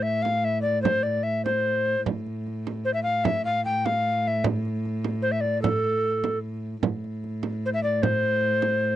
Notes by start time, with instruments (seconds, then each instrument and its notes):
Already playing: viola da gamba A2
0.03 recorder E5
0.22 recorder F5, frame drum
0.45 recorder E5
0.62 recorder D5
0.66 frame drum
0.82 recorder C5, frame drum
1.03 recorder D5
1.23 recorder E5
1.45 recorder C5, frame drum
1.86 frame drum
2.05 viola da gamba A2, frame drum
2.27 frame drum
2.47 frame drum
2.67 frame drum
2.85 recorder C5
2.94 recorder E5
3.03 recorder F5, frame drum
3.24 recorder E5, frame drum
3.45 recorder F5, frame drum
3.65 recorder G5, frame drum
3.85 recorder F5, frame drum
4.26 recorder E5, frame drum
4.44 frame drum
4.65 frame drum
4.85 frame drum
5.04 frame drum
5.22 recorder C5
5.32 recorder E5
5.41 recorder D5, frame drum
5.62 recorder A4, frame drum
6.24 frame drum
6.83 viola da gamba A2, frame drum
7.04 frame drum
7.24 frame drum
7.43 frame drum
7.66 recorder C5
7.74 recorder E5
7.83 recorder D5, frame drum
8.03 recorder C5, frame drum
8.23 frame drum
8.43 frame drum
8.62 frame drum